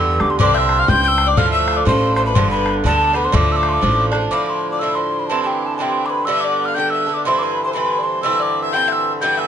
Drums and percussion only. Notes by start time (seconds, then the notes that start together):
0.20 bodhran
0.40 bodhran
0.69 bodhran
0.88 bodhran
1.18 bodhran
1.38 bodhran
1.68 bodhran
1.87 bodhran
2.16 bodhran
2.36 bodhran
2.66 bodhran
2.85 bodhran
3.14 bodhran
3.34 bodhran
3.63 bodhran
3.83 bodhran
4.13 bodhran